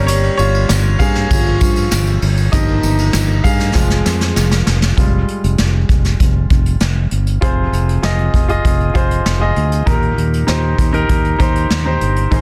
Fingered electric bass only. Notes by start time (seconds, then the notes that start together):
Already playing: G1
0.39 G1
0.70 G1
1.00 G2
1.31 G1
1.61 G2
1.92 G1
2.22 G1
2.53 G1
2.83 G1
3.14 G1
3.44 G2
3.75 F1
4.06 F2
4.37 F1
4.67 F1
4.98 F1
5.44 F1
5.59 F1
5.89 F1
6.20 F1
6.51 F1
6.81 F1
7.12 G1
7.42 F1
7.72 F1
8.03 F1
8.34 F1
8.65 F1
8.95 F1
9.26 F1
9.57 D2
9.87 D#2
10.18 D#2
10.48 D#2
10.79 D#2
11.09 D#2
11.40 D#2
11.71 D#2
12.01 G1
12.32 G#1